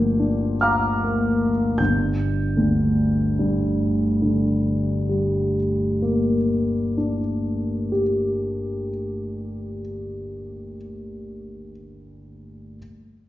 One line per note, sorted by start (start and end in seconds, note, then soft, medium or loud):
0.00 1.74 G1 soft
0.00 1.81 D2 soft
0.00 1.81 F3 soft
0.00 0.69 A#3 soft
0.00 0.56 G5 medium
0.00 0.56 C6 medium
0.00 0.56 D#6 medium
0.00 0.60 G6 medium
0.19 1.49 D4 soft
0.61 1.75 F5 soft
0.61 1.75 A#5 soft
0.61 1.75 D6 soft
0.61 1.79 F6 soft
1.04 1.79 A#3 soft
1.78 5.58 G1 soft
1.78 5.57 G6 soft
2.57 6.36 D2 soft
3.39 7.18 G2 soft
4.22 8.01 D3 soft
5.09 8.88 G3 soft
6.02 9.81 A#3 soft
6.97 10.76 D4 soft
7.92 11.71 G4 soft